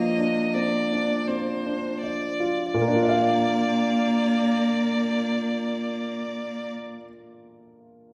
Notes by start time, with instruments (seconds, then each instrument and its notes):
Already playing: grand piano F3 C4 D4 F4 D5, cello A#3, violin D#5
0.18 grand piano D4
0.54 grand piano C4, violin D5
0.92 grand piano D4
1.27 grand piano C4, violin C5
1.66 grand piano D4
2.01 violin D5, grand piano D5
2.40 grand piano F4
2.71 grand piano A#2, cello A#3, violin D5
2.81 grand piano A#3
2.88 grand piano D4
2.95 grand piano F4
3.03 grand piano D5
3.09 grand piano F5